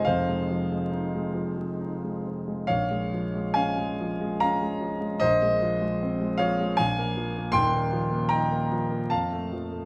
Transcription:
<<
  \new Staff \with { instrumentName = "Grand piano" } { \time 3/4 \key bes \minor \tempo 4 = 74 <c'' f''>2~ <c'' f''>8 r8 | <des'' f''>4 <f'' aes''>4 <f'' bes''>4 | <c'' ees''>4. <des'' f''>8 <f'' aes''>4 | \key ees \lydian <g'' c'''>4 <g'' bes''>4 <f'' a''>4 | }
  \new Staff \with { instrumentName = "Grand piano" } { \clef bass \time 3/4 \key bes \minor <f,, f,>16 aes16 f16 aes16 ees'16 aes16 f16 aes16 ees'16 aes16 f16 aes16 | bes,,16 aes16 f16 aes16 des'16 aes16 f16 aes16 des'16 aes16 f16 aes16 | bes,,16 aes16 f16 aes16 c'16 aes16 f16 aes16 bes,,16 bes16 f16 bes16 | \key ees \lydian <ees,, ees,>16 bes16 f16 bes16 ees'16 bes16 f16 bes16 f,16 a16 f16 a16 | }
>>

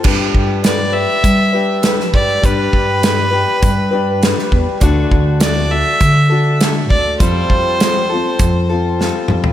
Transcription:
<<
  \new Staff \with { instrumentName = "Fiddle" } { \time 4/4 \key g \major \tempo 4 = 101 r4 d''8 e''4. r8 d''8 | b'2.~ b'8 r8 | r4 d''8 e''4. r8 d''8 | c''2.~ c''8 r8 | }
  \new Staff \with { instrumentName = "Steel-string acoustic guitar" } { \time 4/4 \key g \major <g d' g' b'>4 <g d' g' b'>8 <d' g' b'>4 <d' g' b'>8 <g d' g' b'>4 | <g d' g' b'>4 <g d' g' b'>8 <d' g' b'>4 <d' g' b'>8 <g d' g' b'>4 | <d a d' fis' a'>4 <a d' fis' a'>8 <d' fis' a'>4 <d' fis' a'>8 <a d' fis' a'>4 | <f g c' f' a'>4 <g c' f' a'>8 <c' f' a'>4 <c' f' a'>8 <g c' f' a'>4 | }
  \new Staff \with { instrumentName = "Upright bass" } { \clef bass \time 4/4 \key g \major g,8 g,4. g4. g,8 | g,8 g,4. g,4. e,16 r16 | d,8 d,4. d4. d,8 | f,8 f,4. f,4. f,16 r16 | }
  \new DrumStaff \with { instrumentName = "Drums" } \drummode { \time 4/4 <cymc bd>8 bd8 <hh sn>4 <hh bd>4 <hh sn>16 sn16 bd8 | <hh bd>8 bd8 <hh sn>4 <hh bd>4 <hh sn>16 sn16 bd8 | <hh bd>8 bd8 <hh sn>4 <hh bd>4 <hh sn>8 bd8 | <hh bd>8 bd8 <hh sn>4 <hh bd>4 sn8 toml16 tomfh16 | }
>>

